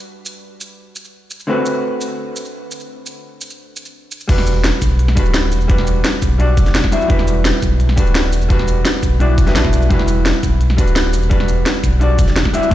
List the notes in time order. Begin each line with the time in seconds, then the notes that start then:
Already playing: G3 D4 F#4 B4
0.26 shaker
0.61 shaker
0.96 shaker
1.05 shaker
1.31 shaker
1.40 shaker
1.47 D3 A3 C4 F#4 B4
1.66 shaker
2.01 shaker
2.36 shaker
2.45 shaker
2.71 shaker
2.80 shaker
3.06 shaker
3.41 shaker
3.50 shaker
3.76 shaker
3.85 shaker
4.11 shaker
4.21 shaker
4.28 E1 G3 D4 F#4 B4, kick, closed hi-hat, crash
4.38 snare
4.47 closed hi-hat, shaker
4.64 snare, closed hi-hat
4.82 B1, kick, closed hi-hat, shaker
4.99 closed hi-hat
5.08 snare
5.15 D1 G3 D4 F#4 B4, kick, closed hi-hat, shaker
5.26 shaker
5.34 snare, closed hi-hat
5.52 E1, open hi-hat, shaker
5.61 shaker
5.68 G3 D4 F#4 B4, kick, closed hi-hat
5.78 snare
5.87 closed hi-hat, shaker
6.04 snare, closed hi-hat
6.22 B1, kick, closed hi-hat, shaker
6.38 G3 D4 F#4 D5, closed hi-hat
6.57 kick, closed hi-hat, shaker
6.66 E1, snare, shaker
6.75 snare, closed hi-hat
6.84 kick, snare
6.91 G3 D4 E4 F#4 E5, open hi-hat, shaker
7.01 shaker
7.08 E1 G3 D4 E4 F#4 B4, kick, closed hi-hat
7.19 snare
7.27 closed hi-hat, shaker
7.45 snare, closed hi-hat
7.62 B1, kick, closed hi-hat, shaker
7.80 closed hi-hat
7.89 snare
7.96 D1 G3 D4 F#4 B4, kick, closed hi-hat, shaker
8.07 shaker
8.15 snare, closed hi-hat
8.33 E1, open hi-hat, shaker
8.42 shaker
8.49 G3 D4 F#4 B4, kick, closed hi-hat
8.59 snare
8.68 closed hi-hat, shaker
8.85 snare, closed hi-hat
9.03 B1, kick, closed hi-hat, shaker
9.20 G3 D4 E4 F#4 D5, closed hi-hat
9.38 kick, closed hi-hat, shaker
9.46 E1 G3 D4 E4 F#4 B4, snare, shaker
9.55 B1 G3 D4 E4 F#4 B4, snare, closed hi-hat
9.64 kick, snare
9.73 B1, open hi-hat, shaker
9.82 shaker
9.89 E1 G3 D4 E4 F#4 B4, kick, closed hi-hat
9.99 snare
10.08 closed hi-hat, shaker
10.26 snare, closed hi-hat
10.43 B1, kick, closed hi-hat, shaker
10.61 closed hi-hat
10.70 snare
10.77 D1 G3 D4 F#4 B4, kick, closed hi-hat, shaker
10.87 shaker
10.96 snare, closed hi-hat
11.13 E1, open hi-hat, shaker
11.23 shaker
11.29 G3 D4 F#4 B4, kick, closed hi-hat
11.40 snare
11.48 closed hi-hat, shaker
11.66 snare, closed hi-hat
11.84 B1, kick, closed hi-hat, shaker
12.00 G3 D4 F#4 D5, closed hi-hat
12.19 kick, closed hi-hat, shaker
12.28 E1, snare, shaker
12.36 snare, closed hi-hat
12.45 kick, snare
12.53 G3 D4 E4 F#4 E5, open hi-hat, shaker
12.63 shaker
12.70 A3 C4, closed hi-hat